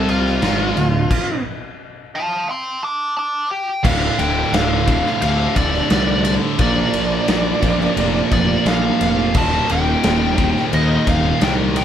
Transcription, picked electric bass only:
Already playing: C2
0.42 G#1
0.76 D1
3.84 D1
4.19 D1
4.53 D1
5.23 D2
5.57 D1
5.91 C2
6.59 A#1
6.94 A#1
7.29 A#1
7.63 A#1
7.97 F1
8.32 F1
8.66 A#1
9.01 F1
9.35 D#1
9.70 D#1
10.05 D#1
10.73 D#2
11.07 D#1
11.42 C2

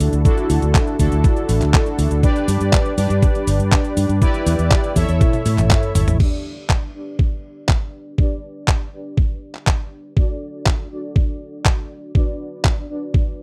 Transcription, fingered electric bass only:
0.00 D2
0.13 D2
0.50 D2
0.62 D2
0.99 D2
1.12 D2
1.49 A1
1.61 D2
1.99 D2
2.11 D2
2.48 G2
2.61 G2
2.98 G2
3.10 G2
3.47 G1
3.60 G2
3.97 G2
4.09 G2
4.46 E2
4.59 E2
4.96 E2
5.09 E2
5.46 A2
5.58 A1
5.95 G1
6.08 A1

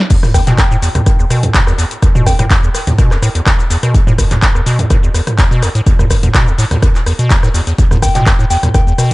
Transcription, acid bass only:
0.10 E2
0.34 E2
0.47 B2
0.58 E2
0.71 A2
0.82 E2
0.95 E2
1.19 E2
1.30 B2
1.43 E2
1.54 A2
1.67 E2
1.78 E2
2.02 E2
2.15 B2
2.26 E2
2.39 A2
2.50 E2
2.63 E2
2.87 E2
2.98 B2
3.11 E2
3.22 A2
3.35 E2
3.46 E2
3.70 E2
3.83 B2
3.94 E2
4.07 A2
4.18 E2
4.31 E2
4.55 E2
4.66 B2
4.79 E2
4.90 A2
5.03 E2
5.14 E2
5.38 E2
5.51 B2
5.62 E2
5.75 A2
5.86 E2
5.99 E2
6.23 E2
6.34 B2
6.47 E2
6.58 A2
6.71 E2
6.82 E2
7.06 E2
7.19 B2
7.30 E2
7.43 A2
7.54 E2
7.67 E2
7.78 E2
7.91 E2
8.02 E2
8.15 B2
8.26 E2
8.39 A2
8.50 E2
8.63 E2
8.74 E2
8.87 E2
8.98 B2

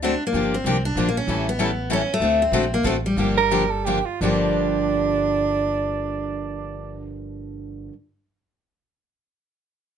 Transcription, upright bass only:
Already playing: D2
0.33 G1
0.64 C2
0.95 A#1
1.27 A1
2.20 D2
2.52 A#1
2.84 A1
3.17 G1
4.21 G1

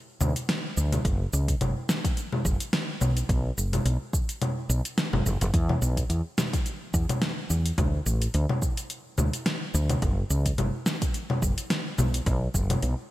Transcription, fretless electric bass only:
0.21 D2
0.77 D2
1.05 F#1
1.33 C#2
1.61 F#1
2.45 F#1
3.01 B1
3.29 B1
3.57 F#1
3.85 B1
4.69 B1
5.13 F#1
5.26 F#1
5.41 F#1
5.54 E2
5.82 B1
6.10 E2
6.94 E2
7.50 E2
7.78 D2
8.06 A1
8.34 D2
9.18 D2
9.74 D2
10.02 F#1
10.30 C#2
10.58 F#1
11.42 F#1
11.99 B1
12.26 B1
12.54 F#1
12.83 B1

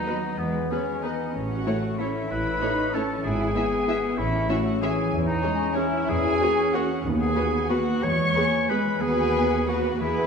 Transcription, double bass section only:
0.39 E2
1.34 A1
2.30 A1
3.24 G#1
4.18 A1
5.12 E2
6.09 E2
7.04 D#2
8.03 E2
9.01 D#2
10.00 E2

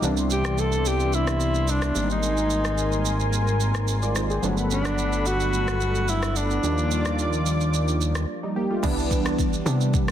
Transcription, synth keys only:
0.02 E3 G3 B3 D4
1.94 G3 A#3 C4 D4
2.04 D#4
4.03 F4 D5
4.16 D#4 C5
4.30 C4 G#4
4.42 F#3 A3 B3 D4
6.62 F3 G3 A#3 D4
8.43 G3 D#4
8.56 A#3 G4
8.71 A3 F4
8.83 E3 G3 B3 D4
9.25 E3 G3 B3 D4
9.65 E3 G3 B3 D4

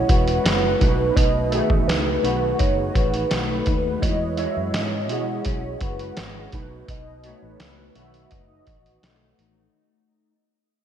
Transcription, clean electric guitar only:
Already playing: E3 G#3 C#4
0.08 F#4
0.44 G#3
0.79 B2
1.16 B2
1.51 A3
1.88 D#4
2.24 F#4
2.59 D#4
2.94 F#4
3.30 A3
3.66 D#4
4.02 E3
4.38 G#3
4.75 C#4
5.11 F#4
5.47 C#4
5.82 F#4
6.19 G#3
6.54 B2
6.90 B2
7.24 A3
7.96 F#4
8.30 D#4
8.66 F#4
9.03 A3
9.39 D#4

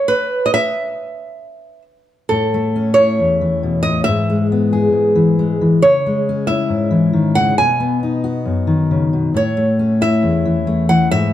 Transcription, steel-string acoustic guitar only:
2.31 A2
2.54 A3
2.76 C#4
2.98 E4
3.19 E2
3.41 E3
3.63 B2
3.86 A2
4.08 G#2
4.30 G#3
4.52 B3
4.73 G#4
4.92 G#2
5.15 E3
5.39 G#3
5.61 E3
5.83 C#3
6.06 G#3
6.29 C#4
6.48 E4
6.69 G#2
6.91 E3
7.13 D#3
7.37 C#3
7.58 B2
7.80 B3
8.03 D#4
8.24 F#4
8.45 F#2
8.67 D#3
8.91 C#3
9.13 B2
9.34 A2
9.57 A3
9.79 C#4
10.01 E4
10.23 E2
10.45 E3
10.67 A3
10.89 E3
11.11 G#2

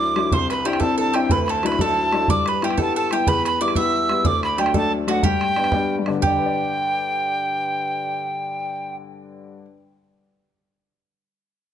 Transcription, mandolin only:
Already playing: D5
0.32 C5
0.50 B4
0.65 G4
0.80 A4
0.98 A4
1.13 G4
1.31 B4
1.49 A4
1.66 B4
1.81 A4
2.30 D5
2.48 B4
2.64 G4
2.78 A4
2.96 A4
3.13 G4
3.27 B4
3.46 B4
3.61 D5
3.76 E5
4.25 D5
4.58 G4
4.74 A4
5.08 F#4
5.24 G4
6.22 G4

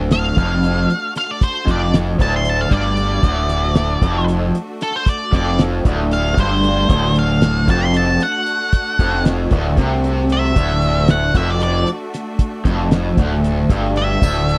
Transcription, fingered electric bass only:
Already playing: D1
0.37 F1
1.67 F1
2.19 D1
2.71 G1
3.23 D1
4.01 F1
5.32 F1
5.85 D1
6.37 G1
6.89 D1
7.68 F1
8.99 F1
9.51 D1
9.77 C2
10.56 D1
11.34 F1
12.65 F1
13.18 D1
13.70 G1
14.22 D1

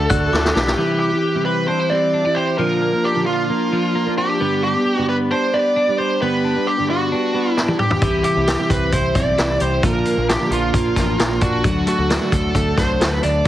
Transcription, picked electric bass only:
0.10 D2
0.32 D2
0.55 B1
8.02 C2
8.36 C2
8.70 C2
8.93 C2
9.15 B1
9.38 C2
9.61 C2
9.83 A#1
10.17 A#1
10.50 A#1
10.74 A#1
10.97 A1
11.42 A#1
11.64 D2
11.99 D2
12.32 D2
12.55 D2
12.77 C2
13.01 D2
13.24 D2

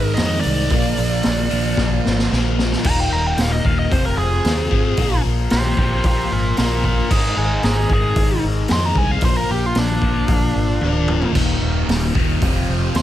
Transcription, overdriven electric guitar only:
Already playing: G#2 D#3 G#3
0.18 G#2 D#3 G#3
0.71 A#2 F3 A#3
1.50 A#2 F3 A#3
2.30 A#2 F3 A#3
2.84 D#2 A#2 D#3
3.65 D#2 A#2 D#3
3.91 F2 C3 F3
4.70 F2 C3 F3
4.98 A#2 F3 A#3
5.77 A#2 F3 A#3
6.57 A#2 F3 A#3
7.09 G#2 D#3 G#3
7.89 G#2 D#3 G#3
8.69 G#2 D#3 G#3
9.23 A#2 F3 A#3
10.03 A#2 F3 A#3
10.82 A#2 F3 A#3
11.36 D#2 A#2 D#3
12.15 D#2 A#2 D#3
12.43 F2 C3 F3

